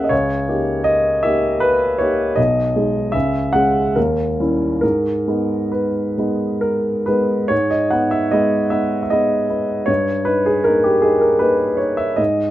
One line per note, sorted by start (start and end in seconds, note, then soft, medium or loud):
0.00 0.14 A#3 soft
0.00 0.14 C#4 soft
0.00 0.14 G#4 soft
0.00 0.14 E5 medium
0.00 0.13 F#5 medium
0.04 0.11 D#5 soft
0.09 0.47 C#2 soft
0.09 0.85 C#5 medium
0.48 1.20 A#3 soft
0.48 1.20 D#4 soft
0.48 1.20 G4 soft
0.84 1.23 D#5 medium
1.23 1.95 A#3 soft
1.23 1.95 D#4 soft
1.23 1.96 G4 soft
1.23 1.61 E5 medium
1.60 1.98 B4 medium
1.98 2.33 A#3 soft
1.98 2.34 D#4 soft
1.98 2.34 G4 soft
1.98 2.37 C#5 medium
2.36 2.74 B1 soft
2.36 3.14 D#5 medium
2.76 3.11 G#3 soft
2.76 3.11 D#4 soft
2.76 3.11 G#4 soft
3.12 3.53 C#2 soft
3.12 3.53 E5 medium
3.53 3.92 G#3 soft
3.53 3.93 C#4 soft
3.53 3.92 G#4 soft
3.53 3.95 F#5 medium
3.95 4.38 D#2 soft
3.95 4.80 A#4 medium
4.40 4.79 G3 soft
4.40 4.79 C#4 soft
4.40 4.80 E4 soft
4.81 5.26 G#2 soft
4.81 5.72 A#4 medium
5.28 6.14 G#3 soft
5.28 6.14 B3 soft
5.28 6.14 D#4 soft
5.72 7.04 B4 soft
6.18 7.04 G#3 soft
6.18 7.04 B3 soft
6.18 7.04 D#4 soft
6.61 7.07 A#4 medium
7.06 7.47 G#3 soft
7.06 7.47 B3 soft
7.06 7.47 D#4 soft
7.06 7.50 B4 medium
7.48 7.91 G#2 soft
7.48 7.70 C#5 medium
7.70 7.92 D#5 medium
7.91 8.29 B3 soft
7.91 8.29 D#4 soft
7.91 8.12 F#5 medium
8.11 8.32 E5 medium
8.31 8.68 G#3 soft
8.31 8.68 B3 soft
8.31 8.68 D#4 soft
8.31 8.71 D#5 medium
8.70 9.07 B3 soft
8.70 9.07 D#4 soft
8.70 9.01 E5 medium
9.03 9.10 E5 soft
9.10 9.46 G#3 soft
9.10 9.46 B3 soft
9.10 9.47 D#4 soft
9.10 9.88 D#5 medium
9.50 9.85 B3 soft
9.50 9.85 D#4 soft
9.86 10.25 G2 soft
9.86 10.26 C#5 medium
10.25 10.61 D#4 soft
10.25 10.45 B4 medium
10.46 10.65 G#4 medium
10.64 11.00 A#3 soft
10.64 11.00 D#4 soft
10.64 10.84 A#4 medium
10.84 11.03 G4 medium
11.02 11.38 D#4 soft
11.02 11.22 G#4 medium
11.21 11.41 A#4 medium
11.39 11.75 A#3 soft
11.39 11.76 D#4 soft
11.39 11.79 B4 medium
11.77 12.14 D#4 soft
11.77 11.98 C#5 soft
11.97 12.18 E5 medium
12.16 12.51 G#2 soft
12.16 12.51 D#5 medium